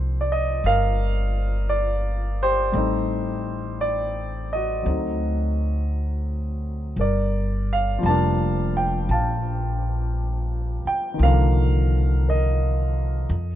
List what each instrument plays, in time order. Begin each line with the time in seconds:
Already playing: upright bass C2, grand piano F3 A#3 C4 D#4 C5
0.21 grand piano D5
0.32 grand piano D#5
0.64 upright bass G1, grand piano A#4 F5
1.69 grand piano D5
2.43 grand piano G4 C5
2.72 upright bass A1, grand piano G3 A3 C4
2.77 grand piano D#4
3.81 grand piano D5
4.53 grand piano F#4 D#5
4.83 upright bass D2, grand piano F#3 A3 C4
4.89 grand piano D#4
6.96 upright bass G1, grand piano A#4
7.01 grand piano D5
7.73 grand piano F5
7.99 grand piano F3 G3
8.03 upright bass F1, grand piano A#3 A5
8.09 grand piano D4
8.77 grand piano G5
9.09 upright bass A#1, grand piano F5 A5
10.85 grand piano G5, muted upright bass stroke
11.14 grand piano D#3
11.18 upright bass C2, grand piano F3 A#3
11.23 grand piano D3 A#4 F5
12.29 grand piano A#4 D#5
13.29 upright bass F2